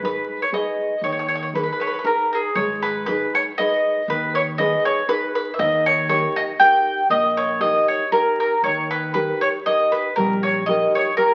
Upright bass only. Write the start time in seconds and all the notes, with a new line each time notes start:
Already playing: G#1
1.01 D#2
2.55 G#1
4.08 D#2
5.59 D#2
7.10 A#1
8.64 D#2
10.17 A#1